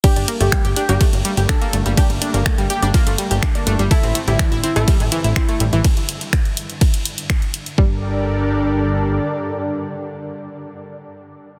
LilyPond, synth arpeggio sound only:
\new Staff \with { instrumentName = "Synth arpeggio sound" } { \time 4/4 \key g \dorian \tempo 4 = 124 <g' g''>16 <d' d''>16 <bes bes'>16 <a a'>16 <g g'>16 <g' g''>16 <d' d''>16 <bes bes'>16 <a a'>16 r16 <g g'>16 <g' g''>16 <d' d''>16 <bes bes'>16 <a a'>16 <g g'>16 | <g' g''>16 r16 <d' d''>16 <bes bes'>16 <a a'>16 <g g'>16 <g' g''>16 <d' d''>16 <bes bes'>16 <a a'>16 <g g'>16 <g' g''>16 <d' d''>16 <bes bes'>16 <a a'>16 <g g'>16 | <e' e''>16 <c' c''>16 <a a'>16 <g g'>16 <e e'>16 <e' e''>16 <c' c''>16 <a a'>16 <g g'>16 r16 <e e'>16 <e' e''>16 <c' c''>16 <a a'>16 <g g'>16 <e e'>16 | r1 |
g8 r2. r8 | r1 | }